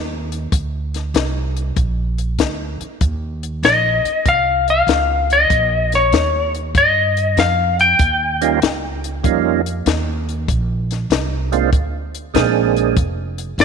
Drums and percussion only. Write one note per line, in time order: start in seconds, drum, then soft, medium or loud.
0.32 closed hi-hat medium
0.52 kick loud
0.52 closed hi-hat medium
0.94 snare soft
0.94 closed hi-hat medium
1.15 snare loud
1.15 closed hi-hat medium
1.57 closed hi-hat medium
1.76 kick loud
1.76 closed hi-hat medium
2.18 closed hi-hat medium
2.39 kick medium
2.39 snare loud
2.39 closed hi-hat medium
2.81 closed hi-hat medium
3.01 kick loud
3.01 closed hi-hat medium
3.43 closed hi-hat medium
3.63 snare loud
3.63 closed hi-hat medium
4.05 closed hi-hat medium
4.26 kick loud
4.26 closed hi-hat medium
4.68 closed hi-hat medium
4.88 snare loud
4.88 closed hi-hat medium
5.30 closed hi-hat medium
5.50 kick loud
5.50 closed hi-hat medium
5.92 snare soft
5.92 closed hi-hat medium
6.12 snare loud
6.12 closed hi-hat medium
6.55 closed hi-hat medium
6.75 kick loud
6.75 closed hi-hat medium
7.17 closed hi-hat medium
7.37 snare loud
7.37 closed hi-hat medium
7.79 closed hi-hat medium
7.99 kick loud
7.99 closed hi-hat medium
8.42 closed hi-hat medium
8.62 snare loud
8.62 closed hi-hat medium
9.04 closed hi-hat medium
9.24 kick loud
9.24 closed hi-hat medium
9.66 closed hi-hat medium
9.86 snare loud
9.86 closed hi-hat medium
10.29 closed hi-hat medium
10.48 kick loud
10.48 closed hi-hat medium
10.91 snare soft
10.91 closed hi-hat medium
11.11 snare loud
11.11 closed hi-hat medium
11.53 closed hi-hat medium
11.73 kick loud
11.73 closed hi-hat medium
12.15 closed hi-hat medium
12.35 kick medium
12.35 snare loud
12.35 closed hi-hat medium
12.77 closed hi-hat medium
12.97 kick loud
12.97 closed hi-hat medium
13.38 closed hi-hat medium
13.59 snare loud
13.59 closed hi-hat medium